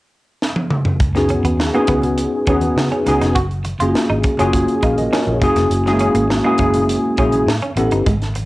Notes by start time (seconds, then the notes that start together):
0.42 snare
0.56 high tom
0.71 mid tom
0.85 floor tom
1.00 C#2, kick, closed hi-hat, muted conga
1.15 B3 C#4 D#4 F#4 G#4, muted clean electric guitar stroke, snare, closed hi-hat, muted conga
1.29 C#4, closed hi-hat, high conga
1.43 D#2 B3, closed hi-hat, high conga
1.58 muted clean electric guitar stroke, snare, muted conga
1.73 A#3 B3 C#4 D#4 F#4 G#4, closed hi-hat, muted conga
1.87 C#2 B3, kick, closed hi-hat, high conga
2.02 closed hi-hat, low conga
2.18 closed hi-hat
2.47 D#2 B3 C#4 D#4 F#4 G#4, kick, closed hi-hat
2.61 closed hi-hat, high conga
2.76 C#3, snare, muted conga, high conga
2.92 C#4, closed hi-hat
3.06 C#2 B3 C#4 D#4 F#4 G#4, muted clean electric guitar stroke, closed hi-hat, low conga
3.21 F1 D#4, snare, closed hi-hat
3.35 F#1 F#4, kick, closed hi-hat
3.50 closed hi-hat, muted conga
3.64 muted clean electric guitar stroke, closed hi-hat, high conga
3.79 F#1 A#3 C#4 F4 F#4 G#4, closed hi-hat, high conga
3.95 snare
4.08 G#1 D#4, muted conga
4.23 muted clean electric guitar stroke, kick, closed hi-hat, high conga
4.37 F#1 A#3 C#4 F4 F#4 G#4, closed hi-hat, low conga
4.53 kick, closed hi-hat
4.68 closed hi-hat
4.82 A#1 D#4 A#4 F5, kick, closed hi-hat
4.97 A#4 D#5, closed hi-hat, high conga
5.12 C#4 G#4 C#5, snare, muted conga, high conga
5.27 A#1 F4 A#4
5.41 F#1 A#3 C#4 E4 F#4 G#4, muted clean electric guitar stroke, kick, closed hi-hat, low conga
5.56 F1 A#3, snare, closed hi-hat
5.70 F#1, closed hi-hat, muted conga
5.86 G#3 C#4 E4 F#4 G#4, muted clean electric guitar stroke, snare
5.93 A#3
5.99 C#4, closed hi-hat, high conga
6.14 G#1 A#3, closed hi-hat, high conga
6.30 muted clean electric guitar stroke, snare, muted conga
6.44 G#3 A#3 C#4 E4 F#4 G#4
6.58 F#1 A#3, kick, closed hi-hat, high conga
6.74 closed hi-hat, low conga
6.89 closed hi-hat
7.05 muted conga
7.17 A#1 A#3 C#4 E4 F#4 G#4, kick, closed hi-hat
7.32 closed hi-hat, high conga
7.46 A2, snare, high conga
7.62 C#4, closed hi-hat, muted conga
7.76 A1 B3 C#4 E4 G4 A4, muted clean electric guitar stroke, closed hi-hat, low conga
7.91 G1 D#4, closed hi-hat
8.06 G#1 G#3, kick, closed hi-hat
8.21 snare, closed hi-hat, muted conga
8.35 muted clean electric guitar stroke, closed hi-hat, high conga